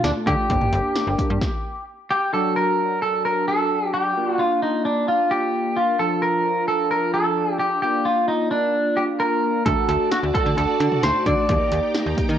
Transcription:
Already playing: A3 D4 F4
0.04 D2 D4, snare, closed hi-hat
0.27 D3 G4, kick, closed hi-hat
0.50 G1 A#3 D4 G4, kick, closed hi-hat
0.62 mid tom
0.73 G1, closed hi-hat
0.96 snare, closed hi-hat
1.07 G1
1.19 kick, closed hi-hat
1.30 G2
1.41 kick, snare
2.10 G4
2.33 F#3 D4 F#4 A4
2.56 A#4
3.02 A4
3.25 A#4
3.48 A4
3.94 G4
4.16 A#3 D4 F4
4.29 F#4
4.39 F4
4.62 D#4
4.85 D4
5.08 F4
5.31 G4
5.76 F4
5.99 F3 D4 F4 A4
6.22 A#4
6.68 A4
6.91 A#4
7.14 A4
7.60 G4
7.82 A#3 D4 F4 G4
8.05 F4
8.28 D#4
8.51 D4
8.97 G4
9.20 A#4
9.65 D2 A3 D4 F#4 A4 D5 A5 D6, kick, closed hi-hat
9.89 D2 F#4 A4, closed hi-hat
10.11 D4 F#4, snare, closed hi-hat
10.23 D2
10.34 F#4 A4, kick, closed hi-hat
10.46 D3
10.57 D2 F#4 A4, closed hi-hat
10.80 D3 D4, closed hi-hat, cowbell
10.92 mid tom
11.03 D2 D#4 C5, snare, closed hi-hat
11.26 D3 D4 D5, kick, closed hi-hat
11.37 D4
11.49 D#2 A#3 D#4 G4 A#5, kick, closed hi-hat
11.72 D#2 G4, closed hi-hat
11.95 D#4, snare, closed hi-hat
12.06 D#2
12.18 G4, kick, closed hi-hat
12.29 D#3

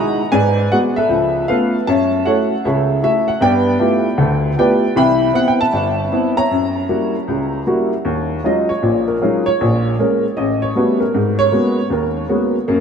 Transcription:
Already playing: G#3 D#4 E4 F#4 D#5 F#5 G#5 A#5
0.32 G#2 B4 D5 G#5
0.72 G#3 B3 F#4 F#5
0.96 A4 B4 E5
1.09 C#2 F3
1.48 A3 B3 C#4 F4 A4 B4 F5
1.87 F#2 C#5 E5 A5
2.25 A3 E4 F#4 A4 C#5 F#5
2.65 C#2 C#3 A4 C#5 E5
3.02 A3 E4 F#4 E5
3.28 F#5
3.40 G2 B3 B4 D5 G5
3.79 A3 B3 E4 F4 G4
4.18 D2 D3
4.57 A3 B3 E4 F4 G4 B4 D5 G5
4.96 C2 E3 E5 G5 B5
5.34 B3 C4 E4 F#5
5.48 G5
5.61 E5 A5
5.73 G1
6.12 B3 C4 E4
6.37 C#5 E5 A#5
6.51 F#2
6.89 G3 A#3 E4 F#4
7.28 C#2
7.67 G3 A#3 E4 F#4
8.05 D#2
8.44 F#3 G#3 C#4 D#4 F4 D#5
8.69 C#5
8.82 A#1 A#2
9.08 A#4
9.22 F#3 G#3 C#4 D#4 F4
9.46 C#5
9.61 A#1 A#2
9.99 G#3 A#3 C#4 A#4
10.37 A1 D#5
10.62 C#5
10.76 G3 A3 B3 C#4 F#4
11.00 A#4
11.14 G#2
11.39 C#5
11.52 G#3 A#3 B3 C#4 F#4
11.90 D#2 A#4
12.29 G#3 A#3 B3 C#4 F#4
12.68 F#2 A#3

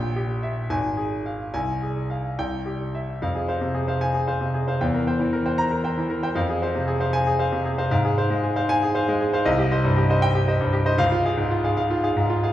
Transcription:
Already playing: A#1 G5
0.16 G4
0.43 E5
0.70 G#1 G#5
0.97 G#4
1.26 F5
1.54 C2 G#5
1.82 G#4
2.10 F5
2.39 C2 G5
2.66 G4
2.95 E5
3.22 F2 F5
3.35 G#4
3.48 C5 F5
3.61 C3
3.74 G#4
3.88 C5 F5
4.01 G#5
4.14 G#4
4.27 C5 F5
4.41 C3
4.54 G#4
4.68 C5 F5
4.81 E2 G5
4.94 A#4
5.07 C5 G5
5.19 E3
5.33 A#4
5.46 C5 G5
5.58 A#5
5.71 A#4
5.84 C5 G5
5.97 E3
6.10 A#4
6.23 C5 G5
6.35 F2 F5
6.49 G#4
6.62 C5 F5
6.75 C3
6.88 G#4
7.00 C5 F5
7.13 G#5
7.27 G#4
7.39 C5 F5
7.52 C3
7.66 G#4
7.78 C5 F5
7.91 G#2 F5
8.05 G#4
8.18 C5 F5
8.30 G#3
8.44 G#4
8.56 C5 F5
8.69 G#5
8.82 G#4
8.95 C5 F5
9.08 G#3
9.21 G#4
9.33 C5 F5
9.46 C2 D#5
9.58 G4
9.72 C5 D#5
9.84 G2
9.97 G4
10.10 C5 D#5
10.22 G5
10.35 G4
10.48 C5 D#5
10.61 G2
10.73 G4
10.86 C5 D#5
10.98 C#2 F5
11.12 F4
11.25 G#4 F5
11.37 G#2
11.51 F4
11.64 G#4 F5
11.77 F5
11.91 F4
12.04 G#4 F5
12.17 G#2
12.30 F4
12.43 G#4 F5

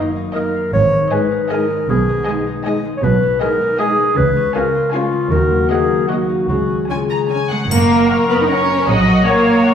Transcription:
Already playing: F#2 F#3 A#3 D#4 A#4 D#5
0.16 D#4
0.34 A#3 D#4 A#4 D#5
0.54 A#3
0.73 G#1 G#2 C#5
0.92 D#3
1.11 G#3 D#4 B4 D#5 G#5
1.31 D#4
1.50 G#3 D#4 A#4 D#5 G#5
1.70 G#3
1.89 B1 B2 G#4
2.09 B3
2.27 G#3 D#4 D#5 G#5
2.47 D#4
2.66 G#3 D#4 D#5 G#5
2.85 G#3
2.97 C#5
3.03 B1 B2 B4
3.23 B3
3.41 G#3 D#4 A#4 D#5 G#5
3.61 D#4
3.79 G#3 D#4 G#4 D#5 G#5
3.99 G#3
4.17 C#2 C#3 B4
4.36 C#4
4.55 G#3 C#4 F4 A#4 F5 G#5
4.75 F4
4.93 G#3 C#4 F4 C#5 F5 G#5
5.12 G#3
5.32 D#2 D#3 A#3 F#4 A#4
5.50 F#3
5.69 A#3 D#4 G#4 D#5 F#5
5.90 A#4
6.08 A#3 F#4 D#5 F#5
6.29 D#4
6.49 C#2 C#3 G#3 F#4 G#4
6.70 C#4
6.89 G#3 C#4 F4 G#4 G#5
7.10 G#4 A#5
7.30 C#4 C#5 G#5
7.50 G#3 G#4 F#5
7.70 F#1 F#2 A#3 A#4, triangle
7.90 F#4
8.10 C#5 F#5
8.29 B3 B4 D#5
8.42 D#4
8.48 C#4 C#5 F#5
8.68 F#4
8.87 A#1 A#2 F#3 F#4 D#5
9.07 F#4
9.26 A#3 A#4 C#5 F#5
9.46 D#5
9.65 C#5 F#5

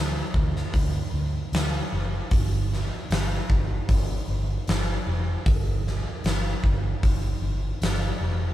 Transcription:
Already playing: D2
0.34 D2, kick
0.56 snare
0.73 D2, kick, open hi-hat
1.13 D2
1.52 D2, snare, open hi-hat
1.92 F#1
2.31 G1, kick, open hi-hat
2.73 snare
3.10 G1, snare, open hi-hat
3.50 G1, kick
3.89 G1, kick, open hi-hat
4.28 G1
4.67 G1, snare, open hi-hat
5.06 F1
5.46 G1, kick, open hi-hat
5.87 snare
6.24 G1, snare, open hi-hat
6.64 G1, kick
7.03 G1, kick, open hi-hat
7.42 G1
7.81 G1, snare, open hi-hat
8.21 F1

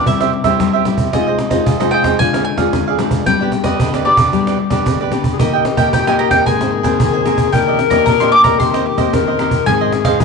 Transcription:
0.06 C3 G3 C4 E4 G4 C5 E5, cajon bass, cajon slap
0.20 G4 C5 E5, cajon slap
0.32 muted cavaquinho stroke, cajon slap
0.44 G3 C4 E4 G4 C5 E5, cajon bass, cajon slap
0.60 G3, cajon bass, cajon slap
0.73 G4 C5 E5
0.85 G3 C4 E4 G4 C5 E5, cajon slap
0.98 cajon bass
1.13 C3 G#3 D#4 F4 G#4 C5 D#5, cajon bass, cajon slap
1.27 G#4 C5 D#5, cajon slap
1.39 muted cavaquinho stroke, cajon slap
1.50 G#3 D#4 F4 G#4 C5 D#5, cajon bass, cajon slap
1.66 C3 F4 G#4 C5 D#5, cajon bass
1.80 G#3 D#4 F4 G#4 C5 D#5, cajon slap
1.91 F4 G#4 C5 D#5 G5, cajon slap
2.04 G#4 C5 D#5, cajon bass, cajon slap
2.19 D3 G#3 D4 F4 G#4 D5 F5 G#5, cajon bass
2.33 G#4 D5 F5, cajon slap
2.44 G#5, muted cavaquinho stroke, cajon slap
2.58 G#3 D4 F4 G#4 D5 F5, cajon bass, cajon slap
2.73 D3, cajon bass, cajon slap
2.87 G#4 D5 F5, cajon slap
2.99 G#3 D4 F4 G#4 D5 F5, cajon slap
3.11 cajon bass
3.26 G3 B3 D4 G4 B4 D5 G5, cajon bass, cajon slap
3.41 B3 D4 G4 B4 D5
3.52 muted cavaquinho stroke, cajon slap
3.64 B3 G4 B4 D5 D#5, cajon bass, cajon slap
3.80 D3 D4 G4 B4 D5, cajon bass
3.94 G4 B4 D5, cajon slap
4.05 B3 D4 G4 B4 D5, cajon slap
4.17 G4 B4 D5, cajon bass, cajon slap
4.33 G3 B3 D4 G4 B4 D5, cajon bass, cajon slap
4.47 G4 B4 D5, cajon slap
4.58 muted cavaquinho stroke, cajon slap
4.70 B3 D4 G4 B4 D5, cajon bass, cajon slap
4.86 D3, cajon bass, cajon slap
5.01 G4 B4 D5
5.11 B3 D4 G4 B4 D5, cajon slap
5.24 cajon bass
5.32 G#4
5.39 D#3 A#3 D#4 G4 A#4 D#5 G5, cajon bass, cajon slap
5.53 A#4 D#5 G5, cajon slap
5.65 muted cavaquinho stroke, cajon slap
5.77 A#3 D#4 G4 A#4 D#5 G5, cajon bass, cajon slap
5.93 A#2 G4 A#4 D#5 G5, cajon bass
6.07 A#3 D#4 G4 A#4 D#5 G5 G#5, cajon slap
6.19 G4 A#4 D#5 G5 A#5, cajon slap
6.31 A#4 D#5 G5, cajon bass, cajon slap
6.46 G#2 D#3 A#3 C4 G#4 A#4 C5 G#5, cajon bass
6.61 C5 G#5, cajon slap
6.72 muted cavaquinho stroke, cajon slap
6.83 D#3 A#3 C4 C5 G#5, cajon bass, cajon slap
7.00 D#3, cajon bass, cajon slap
7.13 C5 G#5, cajon slap
7.25 D#3 A#3 C4 A#4 C5 G#5, cajon slap
7.38 cajon bass
7.52 D#3 A#3 D4 G4 A#4 D5 D#5 G5, cajon bass, cajon slap
7.67 G4 D5 D#5
7.79 muted cavaquinho stroke, cajon slap
7.90 A#3 D4 G4 D5 D#5 A#5, cajon bass, cajon slap
8.06 A#2 D4 G4 D5 D#5 A#5, cajon bass
8.20 A#3 D4 G4 D5 D#5 C6, cajon slap
8.32 D4 G4 D5 D#5 D6, cajon slap
8.44 G4 D5 D#5 A#5, cajon bass, cajon slap
8.60 D#3 A#3 C4 D#4 G4 A#4 C5 D#5 C6, cajon bass
8.74 A#4 C5 D#5, cajon slap
8.85 muted cavaquinho stroke, cajon slap
8.97 A#3 C4 G4 A#4 C5 D#5, cajon bass, cajon slap
9.13 D#3 A#4, cajon bass, cajon slap
9.28 A#4 C5 D#5
9.38 A#3 C4 D#4 G4 A#4 C5 D#5, cajon slap
9.51 cajon bass
9.66 G#2 D#3 G#3 C4 D#4 G#4 C5 D#5 G#5, cajon bass, cajon slap
9.81 G#4 C5 D#5, cajon slap
9.92 muted cavaquinho stroke, cajon slap
10.05 G#4 C5 D#5 F5, cajon bass, cajon slap
10.20 D#3 G#3 C4 D#4 G#4, cajon bass

